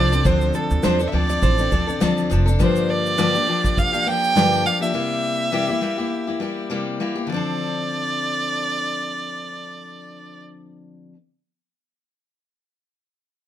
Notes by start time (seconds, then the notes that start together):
Already playing: C2 F3 C4 D4 A4 C5 D5
0.12 C4 D4 A4, shaker
0.24 D2 D3 F3 C4 D4 A4 C5, kick, shaker
0.41 shaker
0.54 A4, shaker
0.71 D2, shaker
0.83 E2 D3 F3 C4 D4 A4 C5, snare, shaker
0.99 C4 D4 A4, shaker
1.07 E5
1.12 D2 F3 C4 D4 A4 D5
1.30 D5, shaker
1.42 A1 C5, kick, shaker
1.58 C4 D4 A4, shaker
1.71 D2 F3 C4 D4 A4, kick, shaker
1.87 C4 D4 A4, shaker
2.00 D2 D3 F3 C4 D4 A4, snare, shaker
2.18 shaker
2.30 F1 F3 C4 D4 A4, shaker
2.46 C4 D4 A4, shaker
2.59 G2 D3 F3 A#3 D4 G4 C5, kick, shaker
2.76 shaker
2.90 D5
3.06 shaker
3.18 G2 D3 F3 A#3 D4 G4, snare, shaker
3.34 F3 A#3 D4 G4, shaker
3.47 F3 A#3 D4 G4
3.64 kick, snare, shaker
3.78 F5, kick, shaker
3.92 F3 A#3 D4 G4, shaker
4.05 F3 A#3 D4 G4 G5
4.24 shaker
4.35 G2 D3 F3 A#3 D4 G4, snare, shaker
4.53 shaker
4.64 F3 A#3 D4 G4 F5, shaker
4.80 F3 A#3 D4 G4 E5, shaker
4.93 C3 G3 A#3 E4 G4
5.52 C3 G3 A#3 E4 G4
5.68 A#3 E4 G4
5.81 G3 A#3 E4 G4
5.98 A#3 E4 G4
6.27 A#3 E4 G4
6.40 G3 A#3 E4 G4
6.70 C3 G3 A#3 E4 G4
7.00 G3 A#3 E4 G4
7.16 A#3 E4 G4
7.27 D3 F3 D5
7.32 C4 D4
7.36 A4